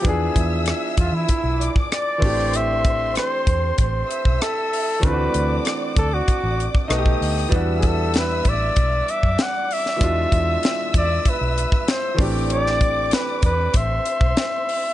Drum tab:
HH |x-x-x-x-x-x-x-o-|x-x-x-x-x-x-x-o-|x-x-x-x-x-x-x-o-|x-x-x-x-x-x-x-o-|
SD |----r-------r--r|----r-------r---|----r-------r--r|----o-------o--o|
BD |o-o---o-o--o--o-|--o---o-o--o----|o-----o-o--o-o--|o-o---o-o--o----|

HH |x-x-x-x-x-x-x-o-|x-x-x-x-x-x-x-o-|
SD |----o-------o---|-o--o-------o---|
BD |o-o---o-o--o--o-|--o---o-o--o----|